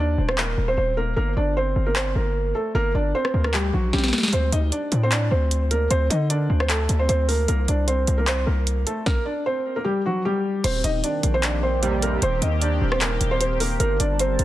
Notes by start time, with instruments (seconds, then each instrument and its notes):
Already playing: 808-style bass D#2
0.00 felt piano D4 D5
0.18 808-style bass D#1
0.29 felt piano C4 C5, cross-stick
0.38 felt piano A#3 A#4, clap
0.58 808-style bass D#1
0.68 felt piano C4 C5
0.77 808-style bass D#1, felt piano C4 C5
0.97 felt piano A#3 A#4
1.16 808-style bass G1, felt piano A#3 A#4
1.37 808-style bass G1, felt piano D4 D5
1.57 felt piano C4 C5
1.76 808-style bass G1
1.86 felt piano A#3 A#4
1.96 felt piano C4 C5, clap
2.15 808-style bass G1, felt piano A#3 A#4
2.55 felt piano A3 A4
2.75 808-style bass G1, felt piano A#3 A#4
2.94 808-style bass G1, felt piano D4 D5
3.15 felt piano C4 C5
3.25 cross-stick
3.34 808-style bass D2
3.44 felt piano A#3 A#4, cross-stick
3.54 felt piano G3 G4, clap
3.73 808-style bass A#1, felt piano F#3 F#4
3.93 808-style bass A#1, felt piano G3 G4, snare
3.98 snare
4.04 snare
4.08 snare
4.13 snare
4.18 snare
4.23 snare
4.28 snare
4.33 808-style bass D2, felt piano C4 C5, closed hi-hat
4.52 808-style bass D2, felt piano D#4 D#5, closed hi-hat
4.72 felt piano D4 D5, closed hi-hat
4.92 808-style bass A2, closed hi-hat
5.03 felt piano C4 C5
5.12 felt piano D4 D5, clap, closed hi-hat
5.31 808-style bass D2, felt piano C4 C5
5.51 closed hi-hat
5.71 felt piano A#3 A#4, closed hi-hat
5.91 808-style bass D2, felt piano C4 C5, closed hi-hat
6.10 808-style bass D3, felt piano D#4 D#5, closed hi-hat
6.30 felt piano D4 D5, closed hi-hat
6.50 808-style bass D2
6.60 felt piano C4 C5, cross-stick
6.69 felt piano A3 A4, clap, closed hi-hat
6.89 808-style bass D2, closed hi-hat
6.99 felt piano C4 C5
7.09 808-style bass D2, felt piano C4 C5, closed hi-hat
7.28 felt piano A#3 A#4, open hi-hat
7.48 808-style bass C2, felt piano A#3 A#4, closed hi-hat
7.68 808-style bass C2, felt piano D4 D5, closed hi-hat
7.87 felt piano C4 C5, closed hi-hat
8.07 808-style bass C2, closed hi-hat
8.18 felt piano A#3 A#4
8.27 felt piano C4 C5, clap, closed hi-hat
8.46 808-style bass C2, felt piano A#3 A#4
8.67 closed hi-hat
8.87 felt piano A3 A4, closed hi-hat
9.06 felt piano A#3 A#4, kick, snare
9.25 felt piano D4 D5
9.46 felt piano C4 C5
9.76 felt piano A#3 A#4
9.84 felt piano G3 G4
10.06 felt piano F#3 F#4
10.25 felt piano G3 G4
10.64 808-style bass D#1, analog synth pad D#3 A#3 C4 G4, felt piano C4 C5, closed hi-hat, crash
10.84 808-style bass D#1, felt piano D#4 D#5, closed hi-hat
11.04 felt piano D4 D5, closed hi-hat
11.23 808-style bass A#1, closed hi-hat
11.34 felt piano C4 C5
11.43 felt piano D4 D5, clap, closed hi-hat
11.63 felt piano C4 C5
11.83 analog polysynth D#2 C3 G3, closed hi-hat
12.02 felt piano A#3 A#4, closed hi-hat
12.22 808-style bass D#1, felt piano C4 C5, closed hi-hat
12.42 808-style bass D#2, felt piano D#4 D#5, closed hi-hat
12.62 felt piano D4 D5, closed hi-hat
12.81 808-style bass D#1
12.92 felt piano C4 C5, cross-stick
13.01 felt piano A#3 A#4, clap, closed hi-hat
13.21 808-style bass D#1, closed hi-hat
13.31 felt piano C4 C5
13.41 felt piano C4 C5, closed hi-hat
13.60 felt piano A#3 A#4, open hi-hat
13.80 808-style bass G1, analog synth pad G3 D4 A#4 A5, felt piano A#3 A#4, closed hi-hat
14.00 808-style bass G1, felt piano D4 D5, closed hi-hat
14.19 felt piano C4 C5, closed hi-hat
14.39 808-style bass G1, closed hi-hat